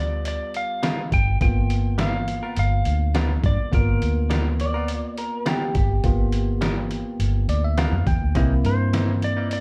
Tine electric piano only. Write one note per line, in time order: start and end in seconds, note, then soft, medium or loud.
0.00 1.37 G3 medium
0.00 1.37 B3 medium
0.00 1.38 F4 medium
1.41 3.69 A#3 medium
1.41 3.69 B3 medium
1.41 3.69 F4 medium
3.72 6.00 A#3 medium
3.72 6.00 B3 medium
3.72 6.01 F4 medium
6.04 8.31 A#3 medium
6.04 8.32 B3 medium
6.04 8.32 F4 medium
7.49 7.63 D5 medium
7.64 7.77 E5 medium
7.78 8.05 F5 medium
8.07 8.34 G5 medium
8.36 9.60 A#3 medium
8.36 9.60 C4 medium
8.36 9.60 E4 medium